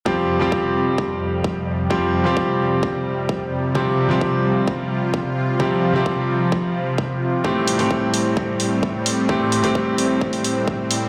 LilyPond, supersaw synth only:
\new Staff \with { instrumentName = "Supersaw synth" } { \clef bass \time 4/4 \key f \major \tempo 4 = 130 << { <f, g>1~ | <f, g>1 | f'1 | f1 |
<a, c'>1~ | <a, c'>1 | } \\ { c1~ | c1~ | c1~ | c1 |
g1~ | g1 | } >> }